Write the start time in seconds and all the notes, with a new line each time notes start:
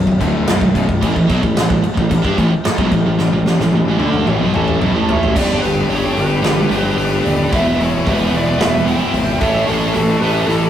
0.07 B0 B1 F#2, kick
0.20 D1 D2 A2 D3, kick, crash
0.47 B0 B1 F#2, snare, crash
0.61 B0 B1 F#2, kick
0.74 B0 B1 F#2, kick, crash
0.88 B0 B1 F#2, kick
1.01 A1 A2 E3, kick, crash
1.15 A1 A2 E3, kick
1.28 B1 B2 F#3, kick, crash
1.43 A1 A2 E3, kick
1.57 A1 A2 E3, snare, crash
1.70 A1 A2 E3, kick
1.84 muted distorted electric guitar stroke, muted picked electric bass stroke, muted overdriven electric guitar stroke, crash
1.97 A1 A2 E3, kick
2.11 A1 A2 E3, kick, crash
2.24 G2 G3 D4, kick
2.38 A1 A2 E3, kick, crash
2.52 muted distorted electric guitar stroke, muted picked electric bass stroke, muted overdriven electric guitar stroke
2.65 muted distorted electric guitar stroke, muted picked electric bass stroke, muted overdriven electric guitar stroke, snare, crash
2.78 B1 B2 F#3, kick
2.91 A1 A2 E3, kick, crash
3.05 A1 A2 E3
3.18 A1 A2 E3, snare
3.32 A1 A2 E3
3.45 A1 A2 E3, snare
3.59 A1 A2 E3, snare
3.72 A1 A2 E3, high tom
3.85 A1 A2 E3
3.98 D2 D3 A3 D4, high tom
4.02 D3 A3 D4
4.13 mid tom
4.26 A1 A2 E3, mid tom
4.40 B1 B2 F#3
4.53 A1 A2 E3 A3 A5, mid tom
4.60 E5
4.68 mid tom
4.81 B1 B2 F#3, mid tom
4.94 A1 A2 E3 A3
5.09 E5, floor tom
5.14 C#5
5.23 floor tom
5.34 G1 G2 D3 G3 D4 G4 D5, kick, crash
5.40 D4 G4 B4
5.50 D4 G4
5.59 G2 D4 G4 B4
5.63 G1 D3 D4 G4, open hi-hat
5.67 G4
5.74 D4 G4
5.81 D4 G4
5.89 G1 G2 D3 G3 D4 G4 C#5, open hi-hat
5.94 D4 G4
6.04 D4 G4
6.12 G3 D4 G4
6.16 G1 G2 D3 D4 G4 B4, open hi-hat
6.21 G4
6.27 D4 G4
6.35 D4 G4
6.42 G1 G2 D3 D4 G4, snare, open hi-hat
6.51 D4 G4
6.59 D4 G4
6.67 G1 G2 D3 G3 D4 G4
6.71 G4, open hi-hat
6.75 D4
6.83 D4 G4
6.91 D4 G4
6.96 G1 G2 D3 D4 G4, open hi-hat
7.05 D4 G4
7.13 D4 G4
7.20 G2 D3 D4 G4
7.25 D#1 D4 G4 B4 D5, open hi-hat
7.37 D4 G4
7.44 D4 G4
7.51 E1 E2 B2 E3 B3 E4 B4 E5, kick, open hi-hat
7.60 B3 E4
7.67 B3 E4
7.75 B3 E4
7.79 E1 E2 B2 B3 A4 C#5, open hi-hat
7.83 E4
7.90 B3 E4
7.98 B3 E4
8.04 E1 E2 B2 E3 B3 E4, kick, open hi-hat
8.09 G4 B4
8.13 B3 E4
8.20 B3
8.24 E4
8.28 E1 E2 B2 B3 E4
8.32 E2 E3 B3, open hi-hat
8.36 E4 B4 D5
8.43 B3 E4
8.50 B3 E4
8.58 E1 E2 B2 B3 E5, snare, open hi-hat
8.62 B3 E4 B4
8.70 B3 E4
8.78 B3 E4
8.85 E2 B2 E3 B3 E4 E5 G5, open hi-hat
8.93 B3 E4
9.01 B3 E4
9.08 B3 E4
9.13 G#1 E2 B2 E4, open hi-hat
9.19 B3
9.23 B3 E4
9.32 B3 E4
9.39 A1 A2 E3 A3 E4 A4 C#5 E5, kick, open hi-hat
9.48 E4 A4
9.56 E4 A4
9.64 E4 A4 C#5, open hi-hat
9.68 A1 A2 E3 A3 E4 A4
9.73 A4
9.79 E4 A4
9.87 E4 A4
9.93 A1 A2 E3 E4 F#4 A4, open hi-hat
10.02 E4 A4
10.11 E4 A4
10.17 A1 E4 A4 B4
10.22 A2 E3 A3 E4, open hi-hat
10.26 A4
10.32 E4 A4
10.41 E4 A4
10.47 A1 E4 A4, snare, open hi-hat
10.51 A2 E3 E4
10.56 E4 A4
10.64 E4 A4